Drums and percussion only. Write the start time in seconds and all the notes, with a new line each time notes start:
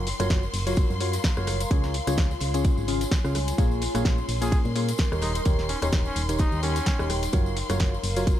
0.07 snare, open hi-hat, ride, tambourine
0.20 cross-stick, closed hi-hat, tambourine, high conga
0.30 kick, snare, closed hi-hat, ride, tambourine
0.43 tambourine
0.54 open hi-hat, tambourine
0.67 snare, closed hi-hat, tambourine
0.76 kick, closed hi-hat, ride, tambourine
0.90 tambourine, high conga
1.00 open hi-hat, ride, tambourine
1.13 snare, closed hi-hat, tambourine
1.24 kick, snare, closed hi-hat, ride, tambourine
1.37 cross-stick, tambourine
1.47 cross-stick, open hi-hat, ride, tambourine, high conga
1.60 closed hi-hat, ride, tambourine
1.71 kick, closed hi-hat, ride, tambourine
1.83 snare, tambourine
1.94 open hi-hat, ride, tambourine
2.07 cross-stick, closed hi-hat, tambourine, high conga
2.18 kick, snare, closed hi-hat, ride, tambourine
2.31 snare, tambourine
2.40 snare, open hi-hat, ride, tambourine
2.54 closed hi-hat, tambourine
2.65 kick, closed hi-hat, ride, tambourine
2.77 tambourine, high conga
2.88 open hi-hat, ride, tambourine
3.01 snare, closed hi-hat, tambourine
3.11 kick, snare, closed hi-hat, ride, tambourine
3.24 cross-stick, snare, tambourine
3.35 cross-stick, open hi-hat, ride, tambourine, high conga
3.48 snare, closed hi-hat, tambourine
3.58 kick, closed hi-hat, ride, tambourine
3.71 tambourine
3.81 snare, open hi-hat, ride, tambourine
3.95 cross-stick, closed hi-hat, tambourine, high conga
4.05 kick, snare, closed hi-hat, ride, tambourine
4.18 tambourine
4.29 open hi-hat, tambourine
4.42 snare, closed hi-hat, tambourine
4.52 kick, closed hi-hat, ride, tambourine
4.65 tambourine, high conga
4.76 open hi-hat, ride, tambourine
4.88 snare, closed hi-hat, tambourine
4.98 kick, snare, closed hi-hat, ride, tambourine
5.12 cross-stick, tambourine
5.21 cross-stick, open hi-hat, ride, tambourine, high conga
5.35 closed hi-hat, ride, tambourine
5.45 kick, closed hi-hat, ride, tambourine
5.59 snare, tambourine
5.69 open hi-hat, ride, tambourine
5.82 cross-stick, closed hi-hat, tambourine, high conga
5.92 kick, snare, closed hi-hat, ride, tambourine
6.05 snare, tambourine
6.16 snare, open hi-hat, ride, tambourine
6.29 closed hi-hat, tambourine
6.39 kick, closed hi-hat, ride, tambourine
6.52 tambourine, high conga
6.63 open hi-hat, ride, tambourine
6.76 snare, closed hi-hat, tambourine
6.86 kick, snare, closed hi-hat, ride, tambourine
6.99 cross-stick, snare, tambourine
7.10 cross-stick, open hi-hat, ride, tambourine, high conga
7.23 snare, closed hi-hat, tambourine
7.33 kick, closed hi-hat, ride, tambourine
7.46 tambourine
7.56 snare, open hi-hat, ride, tambourine
7.69 cross-stick, closed hi-hat, tambourine, high conga
7.80 kick, snare, closed hi-hat, ride, tambourine
7.94 tambourine
8.04 open hi-hat, tambourine
8.16 snare, closed hi-hat, tambourine
8.27 kick, closed hi-hat, ride, tambourine